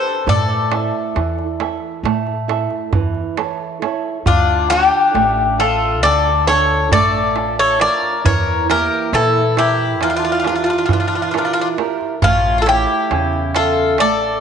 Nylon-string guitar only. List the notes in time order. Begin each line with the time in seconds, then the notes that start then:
Already playing: D4 G4
0.27 A3
0.72 E4 A4 E5
1.15 E3
1.60 E4 A4 E5
2.05 A3
2.48 E4 A4 E5
2.93 E3
3.37 E4 A4 C#5
3.82 E4 A4 C#5
4.26 D3
4.70 D4 F4 A4
5.14 A3
5.58 D4 F4 A4
6.03 D3
6.47 D4 F4 A4
6.92 A3
7.35 D4 F4
7.80 D4 F4
8.25 E3
8.69 A#3 E4 G4
9.13 E3
9.57 E4 G4 A#4
10.01 E3
10.46 E4 G4 A#4
10.90 E3
11.34 E4 G4 A#4
11.78 E4 G4 A#4
12.23 A3
12.67 E4 A4 C#5
13.11 C#3
13.56 A4 E5
14.00 A3